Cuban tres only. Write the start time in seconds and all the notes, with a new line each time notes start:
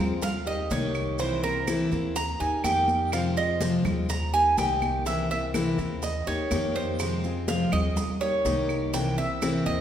0.23 F5
0.47 D#5
0.71 C#5
1.20 C5
1.44 A#4
2.16 A#5
2.40 G#5
2.64 G5
3.13 F5
3.37 D#5
4.10 A#5
4.34 G#5
4.58 G5
5.07 E5
5.31 E5
6.03 D#5
6.27 C#5
6.76 C5
7.48 F5
7.73 D#5
8.21 C#5
8.94 G5
9.18 E5
9.66 D#5